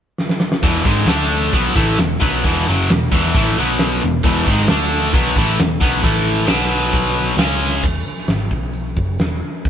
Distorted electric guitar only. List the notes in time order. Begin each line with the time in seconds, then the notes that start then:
0.63 E2 B2 E3
0.85 G#2 D#3 G#3
1.07 D3 A3 D4
1.53 B2 F#3 B3
1.75 A2 E3 A3
1.99 E2 B2
2.20 B2 F#3 B3
2.44 E2 B2 E3
2.67 F#2 C#3 F#3
2.90 E2 B2
3.11 E2 B2 E3
3.34 A2 E3 A3
3.58 B2 F#3 B3
4.02 E2 B2
4.24 E2 B2 E3
4.47 G#2 D#3 G#3
4.69 D3 A3 D4
5.13 B2 F#3 B3
5.37 A2 E3 A3
5.60 E2 B2
5.80 B2 F#3 B3
6.02 A2 E3 A3
6.47 B2 F#3 B3
7.38 C#3 G#3 C#4